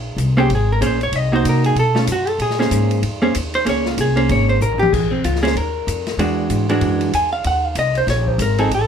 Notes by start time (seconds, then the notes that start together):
Already playing: A#1
0.17 C2, hi-hat pedal, ride
0.37 A#3 C#4 G4 G#4 C5
0.49 G#1, ride
0.55 G#4
0.72 A#4
0.81 A#1 A#3 C#4 G#4 C5, hi-hat pedal, ride
0.86 C5
1.01 C#5, ride
1.12 C2 D#5, ride
1.32 A#3 D#4 F#4 C5
1.45 C3, hi-hat pedal, ride
1.49 A#4
1.64 G#4, ride
1.76 B2 A4, ride
1.95 A3 C#4 D#4 F4, snare
2.07 F#2, hi-hat pedal, ride
2.12 F#4
2.27 A4, ride
2.39 A#2 G#4, ride
2.50 snare
2.59 A#3 C#4 G#4 C5, snare
2.71 G#2, hi-hat pedal, ride
2.91 ride
3.02 F2, ride
3.22 A#3 C#4 G#4 C5
3.35 D#2, hi-hat pedal, ride
3.54 C5, ride
3.65 C#2 A#3 C#4 G#4 C5, ride
3.69 C#5
3.86 F4, snare
3.97 C2 G#4, hi-hat pedal, ride
4.16 A#3 C#4 G#4 C5, ride
4.29 G#1 C#5, ride
4.49 C5
4.61 A1 A#4, hi-hat pedal
4.72 floor tom
4.79 G4, mid tom
4.93 A#1 G#4, kick, crash
5.11 C4
5.24 C#2 F4, hi-hat pedal, ride
5.36 snare
5.43 A#3 C#4 G#4 C5, snare, ride
5.55 D#2 A#4, ride
5.87 F2, hi-hat pedal, ride
6.07 snare, ride
6.17 E2 E3 G#3 D4 F#4, ride
6.50 G#2, hi-hat pedal, ride
6.69 E3 G#3 D4 F#4, ride
6.81 F#2, ride
7.01 ride
7.13 E2 G#5, hi-hat pedal, ride
7.33 F5
7.44 D#2 F#5, ride
7.66 F5
7.75 C2 D#5, hi-hat pedal, ride
7.95 C5, ride
8.07 A#1 C#5, snare, ride
8.27 C5, kick
8.38 G#1 A#4, hi-hat pedal, ride
8.58 F3 C4 D#4 G#4 A4, ride
8.69 A1, ride
8.75 A4